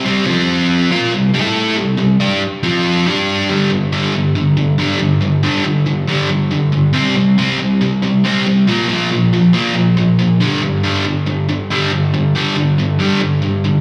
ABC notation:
X:1
M:4/4
L:1/8
Q:1/4=139
K:C
V:1 name="Distorted electric guitar" clef=bass
[C,G,C] [F,CF]3 [_B,F_B] [C,G,] [A,EA]2 | [C,G,] [C,G,] [G,DG] z [F,CF]2 [G,DG]2 | [G,,D,G,] [G,,D,] [G,,D,G,] [G,,D,] [G,,D,] [G,,D,] [G,,D,G,] [G,,D,] | [G,,D,] [G,,D,G,] [G,,D,] [G,,D,] [G,,D,G,] [G,,D,] [G,,D,] [G,,D,] |
[C,G,C] [C,G,] [C,G,C] [C,G,] [C,G,] [C,G,] [C,G,C] [C,G,] | [_B,,F,_B,] [B,,F,B,] [B,,F,] [B,,F,] [B,,F,B,] [B,,F,] [B,,F,] [B,,F,] | [G,,D,G,] [G,,D,] [G,,D,G,] [G,,D,] [G,,D,] [G,,D,] [G,,D,G,] [G,,D,] | [G,,D,] [G,,D,G,] [G,,D,] [G,,D,] [G,,D,G,] [G,,D,] [G,,D,] [G,,D,] |]